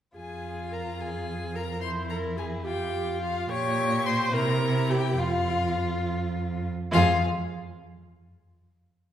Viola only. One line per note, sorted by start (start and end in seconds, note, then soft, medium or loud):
0.16 0.68 G#4 soft
0.72 0.80 A#4 soft
1.00 1.57 G#4 soft
1.55 1.82 A#4 soft
1.83 2.11 C5 soft
2.11 2.38 A#4 medium
2.40 2.65 G#4 soft
2.66 3.21 G4 medium
3.22 3.51 F4 medium
3.49 4.05 C#5 medium
4.06 4.35 C5 medium
4.33 4.91 A#4 medium
4.90 5.20 G4 medium
5.18 6.06 F4 medium
6.92 7.24 F4 medium